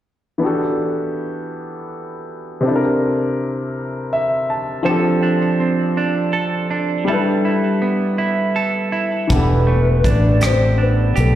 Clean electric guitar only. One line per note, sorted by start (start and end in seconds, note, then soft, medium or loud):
4.85 7.07 F3 medium
4.85 6.33 A4 medium
5.23 5.97 D4 soft
5.60 7.16 C4 soft
5.97 6.70 D4 soft
6.33 7.08 A4 medium
6.71 7.45 D4 soft
7.08 9.29 G3 medium
7.08 8.55 A4 soft
7.45 8.18 E4 soft
7.82 9.67 B3 soft
8.18 8.92 E4 medium
8.56 10.41 A4 medium
8.92 10.04 E4 soft
9.30 11.35 E3 medium
9.67 11.35 A3 soft
10.04 10.78 D4 soft
10.42 11.15 G4 medium
10.78 11.35 D4 soft
11.16 11.35 G4 medium